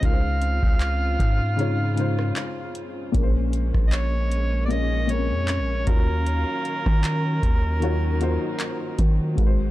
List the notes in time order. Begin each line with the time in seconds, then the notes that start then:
Already playing: C4
0.01 C#2 C#3 G#3 D#4 F4, kick, closed hi-hat
0.05 A#4 F5
0.12 C5
0.42 closed hi-hat
0.63 C#2, kick
0.80 clap, closed hi-hat
1.19 G#2, kick, closed hi-hat
1.56 C#3 G#3 D#4 F4, closed hi-hat
1.61 C#5
1.95 C#3 G#3 D#4 F4, closed hi-hat
2.00 C5
2.19 cross-stick
2.36 clap, closed hi-hat
2.75 closed hi-hat
3.12 A#1 A#2 G#3 A#3 C#4 G#4, kick, closed hi-hat
3.16 A#4
3.23 C5
3.53 closed hi-hat
3.74 A#1, kick, cross-stick
3.87 D#5
3.92 C#5, clap, closed hi-hat
4.32 closed hi-hat
4.65 A#2 A#3 D5
4.70 C#4 G#4 C#5 D#5, closed hi-hat
5.07 A#2 A#3 C4 G#4, closed hi-hat
5.11 A#4 C#5
5.16 C#4
5.31 F2
5.48 clap, closed hi-hat
5.59 A#1
5.85 D#2 D#3 F#3 A#3 F4 F#4 F5, kick, closed hi-hat
5.89 A#4 C#5
6.26 closed hi-hat
6.65 closed hi-hat
6.86 D#3, kick, cross-stick
7.04 clap, closed hi-hat
7.43 D#2 D#4, kick, closed hi-hat
7.80 D#3 A#3 F4 F#4, closed hi-hat
7.84 C#5
8.19 D#3 A#3 F4 F#4, closed hi-hat
8.23 C5
8.60 clap, closed hi-hat
8.99 D#3, kick, closed hi-hat
9.35 G#1 G#2 G#3 C4 F#4 A#4, kick, closed hi-hat
9.40 B4
9.46 C5